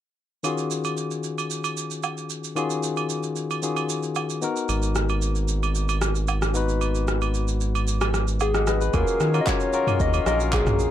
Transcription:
0.43 tine electric piano D#3 C#4 F4 F#4 G#4, high agogo, shaker
0.58 shaker
0.71 shaker
0.84 high agogo, shaker
0.97 shaker
1.11 shaker
1.24 shaker
1.38 high agogo, shaker
1.51 shaker
1.64 high agogo, shaker
1.77 shaker
1.91 shaker
2.03 high agogo, low woodblock, shaker
2.17 shaker
2.30 shaker
2.44 shaker
2.56 tine electric piano D#3 C#4 F4 F#4 G#4, high agogo, shaker
2.70 shaker
2.83 shaker
2.97 high agogo, shaker
3.10 shaker
3.23 shaker
3.36 shaker
3.51 high agogo, shaker
3.62 tine electric piano D#3 C#4 F4 F#4 G#4, shaker
3.77 high agogo, shaker
3.90 shaker
4.03 shaker
4.15 high agogo, low woodblock, shaker
4.30 shaker
4.41 tine electric piano B3 D#4 F#4 A#4, shaker
4.56 shaker
4.69 analog synth bass G#1, high agogo, shaker
4.82 shaker
4.95 cross-stick, shaker
5.09 high agogo, shaker
5.22 shaker
5.35 shaker
5.48 shaker
5.63 high agogo, shaker
5.75 shaker
5.89 high agogo, shaker
6.02 cross-stick, shaker
6.15 shaker
6.28 high agogo, low woodblock, shaker
6.42 cross-stick, shaker
6.54 tine electric piano B3 D#4 F#4 B4, shaker
6.69 shaker
6.81 high agogo, shaker
6.95 shaker
7.08 cross-stick, shaker
7.22 high agogo, shaker
7.34 shaker
7.48 shaker
7.61 shaker
7.75 high agogo, shaker
7.88 shaker
8.01 cross-stick, high agogo, shaker
8.14 cross-stick, shaker
8.28 shaker
8.40 soft synth lead G#4, high agogo, low woodblock, shaker
8.54 tine electric piano D#5 F#5, cross-stick, shaker
8.67 tine electric piano B4 D#5, cross-stick, shaker
8.81 tine electric piano G#4 B4, shaker
8.93 analog synth bass D#2, harmonium D#3 F#3 C#4 G#4 F5, tine electric piano C#4 F4 F#4 G#4, soft synth lead A#4, kick, high agogo, shaker
9.07 shaker
9.20 analog synth bass D#3, cross-stick, shaker
9.34 tine electric piano C#4 F4 F#4 A#4, high agogo, shaker
9.41 soft synth lead D#5
9.46 soft synth lead C#5, kick, clap, low woodblock, shaker
9.60 shaker
9.73 tine electric piano C#4 F4 F#4 A#4, shaker
9.87 mid tom, high agogo, shaker
10.00 analog synth bass D#2, soft synth lead D#5, kick, shaker
10.14 high agogo, shaker
10.26 analog synth bass A#1, tine electric piano C#4 F4 F#4 A#4, soft synth lead D#5, cross-stick, shaker
10.40 shaker
10.52 soft synth lead G#4, kick, clap, high agogo, low woodblock, shaker
10.67 cross-stick, mid tom, shaker
10.79 shaker

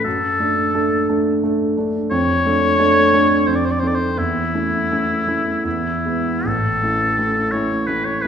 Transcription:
0.04 grand piano F#2, oboe A4
0.40 grand piano A3 D4 A4
0.74 grand piano A3 D4 A4
1.09 grand piano A3 D4 A4
1.43 grand piano A3 D4 A4
1.77 grand piano A3 D4 A4
2.11 grand piano F2, oboe C#5
2.45 grand piano A3 D4 A4
2.79 grand piano A3 D4 A4
3.13 grand piano A3 D4 A4
3.47 grand piano F2, oboe C5
3.55 oboe D5
3.65 oboe C5
3.71 oboe D5
3.80 grand piano C4 D#4 A4, oboe C5
3.87 oboe D5
3.95 oboe C5
4.18 grand piano E2, oboe E4
4.54 grand piano A3 C#4 E4
4.91 grand piano A3 C#4 E4
5.27 grand piano A3 C#4 E4
5.65 grand piano E2, oboe E4
6.05 grand piano G#3 B3 E4
6.45 grand piano A1, oboe A4
6.82 grand piano A3 C#4 E4
7.18 grand piano A3 C#4 E4
7.51 grand piano A3 C#4 E4, oboe C#5
7.87 grand piano A3 C#4 E4, oboe B4
8.05 oboe C#5
8.22 grand piano A3, oboe B4

